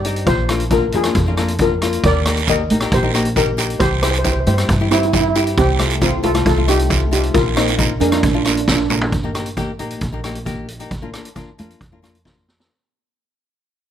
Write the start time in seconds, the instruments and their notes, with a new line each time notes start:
Already playing: upright bass G2, steel pan G4 D5
0.05 nylon-string guitar C4 D#4 G4, closed hi-hat
0.16 closed hi-hat
0.26 upright bass A#1, steel pan F4 C5, kick, closed hi-hat
0.49 nylon-string guitar A#3 D4 F4, cross-stick, closed hi-hat
0.60 closed hi-hat
0.70 nylon-string guitar A#3 D4 F4, steel pan F4 A#4, kick, closed hi-hat
0.92 upright bass F2, nylon-string guitar A#3 D4 F4, steel pan F4 G#4, closed hi-hat
1.04 nylon-string guitar A#3 D4 F4, cross-stick, closed hi-hat
1.15 upright bass F2, kick, closed hi-hat
1.27 nylon-string guitar A#3 D4 F4
1.37 nylon-string guitar A#3 D4 F4, cross-stick, closed hi-hat
1.48 closed hi-hat
1.58 nylon-string guitar A#3 D4 F4, steel pan F4 A#4, kick, closed hi-hat
1.82 nylon-string guitar A#3 D4 F4, cross-stick, closed hi-hat
1.93 closed hi-hat
2.04 upright bass D#2, steel pan A#4 D5, kick, closed hi-hat, long guiro
2.25 nylon-string guitar A#3 D#4 G4, cross-stick, closed hi-hat
2.37 closed hi-hat
2.48 nylon-string guitar A#3 D#4 G4, steel pan A#4 D#5, kick, closed hi-hat, short guiro
2.70 upright bass A#1, nylon-string guitar A#3 D#4 G4, closed hi-hat
2.80 nylon-string guitar A#3 D#4 G4, cross-stick, closed hi-hat
2.92 upright bass A#1, steel pan G4 C5, kick, closed hi-hat, long guiro
3.02 nylon-string guitar A#3 D#4 G4
3.14 nylon-string guitar A#3 D#4 G4, cross-stick, closed hi-hat, short guiro
3.25 closed hi-hat
3.36 nylon-string guitar A#3 D#4 G4, steel pan G4 A#4, kick, closed hi-hat, short guiro
3.57 nylon-string guitar A#3 D#4 G4, closed hi-hat, short guiro
3.70 closed hi-hat
3.80 upright bass C2, steel pan G4 C5, kick, closed hi-hat, long guiro
4.02 nylon-string guitar C4 E4 G4, steel pan G#4 C5, cross-stick, closed hi-hat
4.11 steel pan C5, closed hi-hat
4.19 steel pan C5
4.24 nylon-string guitar C4 E4 G4, steel pan C5, kick, closed hi-hat, short guiro
4.32 steel pan C5
4.40 steel pan C5
4.46 upright bass G2, nylon-string guitar C4 E4 G4, steel pan C5, closed hi-hat
4.54 steel pan C5, cross-stick, closed hi-hat
4.58 nylon-string guitar C4 E4 G4
4.69 upright bass G2, kick, closed hi-hat, long guiro
4.80 nylon-string guitar C4 E4 G4
4.91 nylon-string guitar C4 E4 G4, steel pan C4 E4, cross-stick, closed hi-hat, short guiro
4.98 steel pan E4
5.03 steel pan E4, closed hi-hat
5.13 nylon-string guitar C4 E4 G4, steel pan E4, kick, closed hi-hat, short guiro
5.20 steel pan E4
5.28 steel pan E4
5.35 nylon-string guitar C4 E4 G4, steel pan E4, closed hi-hat, short guiro
5.44 steel pan E4, closed hi-hat
5.57 upright bass C2, steel pan C4 G4, kick, closed hi-hat, long guiro
5.79 nylon-string guitar A3 C4 F4, cross-stick, closed hi-hat
5.90 closed hi-hat
6.01 nylon-string guitar A3 C4 F4, steel pan C4 F4, kick, closed hi-hat, short guiro
6.23 upright bass C2, nylon-string guitar A3 C4 F4, steel pan F4 A4, closed hi-hat
6.34 nylon-string guitar A3 C4 F4, cross-stick, closed hi-hat
6.46 upright bass C2, steel pan F4 A4, kick, closed hi-hat, long guiro
6.57 nylon-string guitar A3 C4 F4
6.67 nylon-string guitar A3 C4 F4, steel pan D#4 G4, cross-stick, closed hi-hat, short guiro
6.79 closed hi-hat
6.89 nylon-string guitar A3 C4 F4, kick, closed hi-hat, short guiro
7.11 nylon-string guitar A3 C4 F4, steel pan D#4 G4, closed hi-hat, short guiro
7.23 closed hi-hat
7.34 upright bass A#1, steel pan F4 A#4, kick, closed hi-hat, long guiro
7.56 nylon-string guitar A#3 D#4 F4, steel pan C4 D#4, cross-stick, closed hi-hat
7.68 closed hi-hat
7.78 nylon-string guitar A#3 D#4 F4, kick, closed hi-hat, short guiro
8.00 upright bass F2, nylon-string guitar A#3 D#4 G#4, steel pan D4 A#4, closed hi-hat
8.09 nylon-string guitar A#3 D#4 F4, steel pan D4, cross-stick, closed hi-hat
8.17 steel pan D4
8.23 upright bass A#1, steel pan D4, kick, closed hi-hat, long guiro
8.32 nylon-string guitar A#3 D4 F4, steel pan D4
8.39 steel pan D4
8.45 nylon-string guitar A#3 D4 F4, steel pan D4, cross-stick, closed hi-hat, short guiro
8.55 steel pan D4, closed hi-hat
8.61 steel pan D4
8.68 nylon-string guitar A#3 D4 F4, steel pan D4, kick, snare, short guiro
8.76 steel pan D4
8.90 nylon-string guitar A#3 D4 F4, mid tom, short guiro
9.01 floor tom
9.12 upright bass D#2, kick, closed hi-hat
9.23 nylon-string guitar A#3 D#4 G4
9.34 nylon-string guitar A#3 D#4 G4, cross-stick, closed hi-hat
9.46 closed hi-hat
9.57 nylon-string guitar A#3 D#4 G4, kick, closed hi-hat
9.79 upright bass A#1, nylon-string guitar A#3 D#4 G4, closed hi-hat
9.90 closed hi-hat
10.01 upright bass A#1, kick, closed hi-hat
10.12 nylon-string guitar A#3 D#4 G4
10.24 nylon-string guitar A#3 D#4 G4, cross-stick, closed hi-hat
10.35 closed hi-hat
10.45 nylon-string guitar A#3 D#4 G4, kick, closed hi-hat
10.68 closed hi-hat
10.79 nylon-string guitar A#3 D#4 G4, closed hi-hat
10.91 upright bass A#1, kick, closed hi-hat
11.02 nylon-string guitar A#3 D4 F4
11.13 nylon-string guitar A#3 D4 F4, cross-stick, closed hi-hat
11.25 closed hi-hat
11.36 nylon-string guitar A#3 D4 F4, kick, closed hi-hat
11.58 upright bass F2, nylon-string guitar A#3 D4 F4, closed hi-hat
11.70 closed hi-hat
11.81 upright bass F2, kick, closed hi-hat
11.92 nylon-string guitar A#3 D4 F4
12.02 nylon-string guitar A#3 D4 F4, cross-stick, closed hi-hat
12.15 closed hi-hat
12.25 nylon-string guitar A#3 D4 F4, kick, snare
12.48 snare
12.58 nylon-string guitar A#3 D4 F4, snare